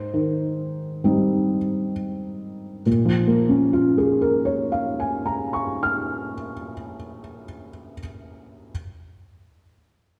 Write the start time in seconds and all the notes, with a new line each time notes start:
Already playing: G#2 C5
0.14 D#3
1.04 G3 C4 D#4
2.86 A#2
3.05 F3
3.27 A#3
3.49 C#4
3.73 F4
3.98 G#4
4.21 A#4
4.45 C#5
4.72 F5
5.00 G#5
5.26 A#5
5.53 C#6
5.83 F6